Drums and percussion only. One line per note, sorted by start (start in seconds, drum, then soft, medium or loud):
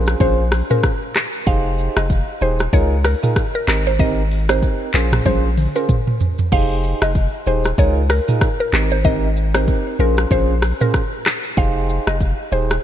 0.07 cross-stick loud
0.07 shaker medium
0.20 kick loud
0.20 shaker medium
0.52 cross-stick loud
0.52 open hi-hat medium
0.52 shaker medium
0.70 mid tom loud
0.70 shaker medium
0.83 kick loud
0.83 cross-stick loud
0.83 shaker medium
1.14 cross-stick loud
1.14 clap loud
1.14 shaker medium
1.33 shaker medium
1.47 kick loud
1.47 shaker medium
1.79 shaker medium
1.97 cross-stick loud
1.97 shaker medium
2.10 kick loud
2.10 shaker medium
2.41 shaker medium
2.59 cross-stick medium
2.59 shaker medium
2.73 kick loud
2.73 shaker medium
3.04 cross-stick loud
3.04 open hi-hat medium
3.04 shaker medium
3.23 mid tom loud
3.23 shaker medium
3.36 kick loud
3.36 cross-stick loud
3.36 shaker medium
3.67 cross-stick loud
3.67 clap medium
3.67 shaker medium
3.86 shaker medium
3.99 kick loud
3.99 shaker medium
4.31 open hi-hat medium
4.31 shaker medium
4.49 cross-stick loud
4.49 shaker medium
4.63 kick loud
4.63 shaker medium
4.94 clap loud
4.94 shaker medium
5.12 cross-stick loud
5.12 mid tom loud
5.12 shaker medium
5.26 kick loud
5.26 high tom medium
5.26 shaker medium
5.57 open hi-hat medium
5.57 mid tom medium
5.57 shaker medium
5.76 shaker medium
5.89 kick medium
5.89 mid tom loud
5.89 shaker medium
6.07 mid tom medium
6.20 floor tom loud
6.20 shaker medium
6.38 floor tom loud
6.38 shaker medium
6.52 kick loud
6.52 crash medium
6.84 shaker medium
7.02 cross-stick loud
7.02 shaker medium
7.15 kick loud
7.15 shaker medium
7.46 shaker medium
7.65 cross-stick medium
7.65 shaker medium
7.78 kick loud
7.78 shaker medium
8.10 cross-stick loud
8.10 open hi-hat medium
8.10 shaker medium
8.28 mid tom loud
8.28 shaker medium
8.41 kick loud
8.41 cross-stick loud
8.41 shaker medium
8.72 cross-stick medium
8.72 clap loud
8.72 shaker medium
8.91 shaker medium
9.05 kick loud
9.05 shaker medium
9.37 shaker medium
9.54 cross-stick loud
9.54 shaker medium
9.68 kick loud
9.68 shaker medium
9.99 shaker medium
10.17 cross-stick loud
10.17 shaker medium
10.31 kick loud
10.31 shaker medium
10.62 cross-stick loud
10.62 open hi-hat medium
10.62 shaker medium
10.81 mid tom loud
10.81 shaker medium
10.94 kick loud
10.94 cross-stick loud
10.94 shaker medium
11.25 cross-stick medium
11.25 clap loud
11.25 shaker medium
11.43 shaker medium
11.57 kick loud
11.57 shaker medium
11.89 shaker medium
12.07 cross-stick loud
12.07 shaker medium
12.21 kick loud
12.21 shaker medium
12.52 shaker medium
12.70 cross-stick loud
12.70 shaker medium